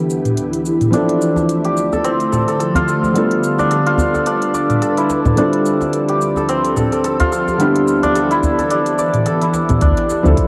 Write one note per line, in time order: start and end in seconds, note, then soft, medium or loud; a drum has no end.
0.00 0.89 D2 medium
0.00 0.89 D3 medium
0.00 0.91 E3 medium
0.00 0.89 G3 medium
0.00 0.90 B3 medium
0.00 0.91 B3 medium
0.00 0.90 D4 medium
0.00 0.91 E4 medium
0.00 3.11 E4 medium
0.00 0.89 G4 medium
0.00 0.91 G4 medium
0.10 cabasa medium
0.25 closed hi-hat soft
0.25 mid tom medium
0.25 cabasa soft
0.37 closed hi-hat medium
0.37 cabasa soft
0.53 closed hi-hat soft
0.53 cabasa soft
0.66 cabasa medium
0.81 closed hi-hat soft
0.81 mid tom medium
0.81 cabasa soft
0.91 5.34 D3 medium
0.91 3.11 F3 medium
0.91 3.13 F3 medium
0.91 3.13 A3 medium
0.91 3.12 C4 medium
0.91 3.12 D4 medium
0.91 3.59 D4 medium
0.91 3.13 E4 medium
0.91 closed hi-hat soft
0.91 cabasa soft
0.95 3.13 A4 medium
1.09 closed hi-hat soft
1.21 cabasa medium
1.36 djembe slap soft
1.36 djembe tone medium
1.36 cabasa soft
1.49 closed hi-hat medium
1.49 cabasa soft
1.64 4.79 G4 medium
1.64 closed hi-hat soft
1.77 cabasa medium
1.93 2.32 A4 medium
1.93 djembe tone medium
1.93 cabasa soft
2.04 6.04 C4 medium
2.04 closed hi-hat medium
2.04 cabasa soft
2.20 closed hi-hat soft
2.20 cabasa soft
2.32 2.48 A4 medium
2.32 mid tom medium
2.32 djembe tone soft
2.32 cabasa medium
2.48 2.59 A4 medium
2.48 closed hi-hat soft
2.48 cabasa soft
2.60 2.87 A4 medium
2.60 closed hi-hat medium
2.60 cabasa soft
2.75 3.86 F4 medium
2.75 closed hi-hat soft
2.75 djembe tone medium
2.75 djembe bass medium
2.75 cabasa soft
2.88 3.71 A4 medium
2.88 cabasa medium
3.03 djembe tone soft
3.03 cabasa soft
3.13 5.34 D3 medium
3.13 5.34 G3 medium
3.13 5.35 G3 medium
3.13 5.34 B3 medium
3.13 5.35 D4 medium
3.13 5.35 F4 medium
3.13 7.56 A4 medium
3.13 5.35 B4 medium
3.13 closed hi-hat medium
3.13 cabasa soft
3.17 5.36 A4 medium
3.31 closed hi-hat soft
3.44 cabasa medium
3.58 4.26 D4 medium
3.58 djembe slap soft
3.58 djembe tone soft
3.58 cabasa soft
3.71 4.14 A4 medium
3.71 closed hi-hat medium
3.71 cabasa soft
3.86 5.04 F4 medium
3.86 closed hi-hat soft
3.98 djembe bass medium
3.98 cabasa medium
4.14 4.82 A4 medium
4.14 djembe tone soft
4.14 cabasa soft
4.26 5.38 D4 medium
4.26 closed hi-hat medium
4.26 cabasa soft
4.42 closed hi-hat soft
4.42 cabasa soft
4.54 7.01 D5 medium
4.54 djembe slap soft
4.54 cabasa medium
4.70 closed hi-hat soft
4.70 mid tom medium
4.70 djembe slap soft
4.70 cabasa soft
4.82 6.37 A4 medium
4.82 closed hi-hat medium
4.82 cabasa soft
4.97 7.26 E4 medium
4.97 closed hi-hat soft
4.97 cabasa soft
5.10 djembe slap medium
5.10 cabasa medium
5.25 mid tom medium
5.25 djembe slap soft
5.25 djembe bass medium
5.25 cabasa soft
5.36 7.58 D2 medium
5.36 7.56 D3 medium
5.36 7.58 F3 medium
5.36 7.56 G3 medium
5.36 7.57 C4 medium
5.36 7.58 C4 medium
5.36 8.03 D4 medium
5.36 7.57 E4 medium
5.36 7.58 F4 medium
5.36 9.78 G4 medium
5.36 closed hi-hat medium
5.36 cabasa soft
5.40 7.58 A4 medium
5.53 closed hi-hat soft
5.66 cabasa medium
5.81 djembe slap soft
5.81 djembe tone medium
5.81 cabasa soft
5.93 closed hi-hat medium
5.93 cabasa soft
6.09 9.23 G4 medium
6.09 closed hi-hat soft
6.21 cabasa medium
6.36 6.76 A4 medium
6.36 djembe tone medium
6.36 cabasa soft
6.49 10.48 C4 medium
6.49 closed hi-hat medium
6.49 cabasa soft
6.64 closed hi-hat soft
6.64 cabasa soft
6.76 6.92 A4 medium
6.76 mid tom medium
6.76 djembe tone medium
6.76 cabasa medium
6.92 7.04 A4 medium
6.92 closed hi-hat soft
6.92 cabasa soft
7.04 7.32 A4 medium
7.04 closed hi-hat medium
7.04 cabasa soft
7.20 8.37 F4 medium
7.20 closed hi-hat soft
7.20 djembe tone medium
7.20 djembe bass medium
7.20 cabasa soft
7.32 8.15 A4 medium
7.32 cabasa medium
7.48 djembe tone medium
7.48 cabasa soft
7.58 9.80 D2 medium
7.58 9.78 D3 medium
7.58 9.80 E3 medium
7.58 9.79 G3 medium
7.58 9.79 B3 medium
7.58 9.80 B3 medium
7.58 9.79 D4 medium
7.58 9.80 E4 medium
7.58 9.80 G4 medium
7.58 closed hi-hat medium
7.58 cabasa soft
7.75 closed hi-hat soft
7.88 cabasa medium
8.03 8.71 D4 medium
8.03 closed hi-hat soft
8.03 djembe slap soft
8.03 djembe tone medium
8.03 cabasa soft
8.15 8.58 A4 medium
8.15 closed hi-hat medium
8.15 cabasa soft
8.31 9.42 E4 medium
8.31 closed hi-hat soft
8.31 cabasa soft
8.43 djembe bass medium
8.43 cabasa medium
8.59 9.26 A4 medium
8.59 closed hi-hat soft
8.59 djembe tone medium
8.59 cabasa soft
8.71 9.81 D4 medium
8.71 closed hi-hat medium
8.71 cabasa soft
8.86 closed hi-hat soft
8.86 cabasa soft
8.98 10.48 D5 medium
8.98 djembe slap soft
8.98 cabasa medium
9.14 closed hi-hat soft
9.14 mid tom medium
9.14 djembe slap soft
9.14 cabasa soft
9.26 10.48 A4 medium
9.26 closed hi-hat medium
9.26 cabasa soft
9.42 10.48 E4 medium
9.42 closed hi-hat soft
9.42 cabasa soft
9.54 djembe slap medium
9.54 cabasa medium
9.69 closed hi-hat soft
9.69 mid tom medium
9.69 djembe slap soft
9.69 djembe tone soft
9.69 djembe bass medium
9.69 cabasa soft
9.81 9.94 D2 loud
9.81 10.48 F3 medium
9.81 10.48 D4 medium
9.81 10.48 D5 medium
9.81 10.48 E5 medium
9.81 10.48 C6 medium
9.81 kick loud
9.81 closed hi-hat medium
9.81 cabasa soft
9.97 closed hi-hat soft
9.97 djembe slap medium
10.10 djembe slap soft
10.10 cabasa medium
10.23 10.35 D2 medium
10.23 10.48 F3 medium
10.23 10.48 C4 medium
10.23 10.48 D4 medium
10.23 10.48 E4 medium
10.23 10.48 A4 medium
10.23 djembe tone medium
10.23 cabasa soft
10.37 kick loud
10.37 closed hi-hat medium
10.37 cabasa soft